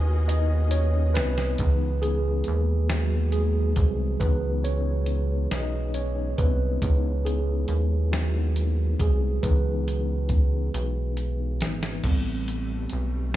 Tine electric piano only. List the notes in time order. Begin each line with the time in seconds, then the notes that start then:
Already playing: D#4 E4 F#4 B4
0.28 D#4 D#5
0.71 C#4 C#5
1.14 B3 B4
1.59 E3 B3 D#4
2.02 G#3 G#4
2.89 F#3 F#4
3.32 G#3 G#4
4.20 E3 B3 D#4 B4
4.64 C#4 C#5
5.51 D#4 D#5
5.94 C#4 C#5
6.38 B3 B4
6.82 B3 D#4 E4
7.25 G#3 G#4
8.12 F#3 B3 D#4 E4 F#4
9.00 G#3 G#4
9.43 E3 B3 D#4 B4
11.61 E3 B3 D#4
12.04 G3 B3 C4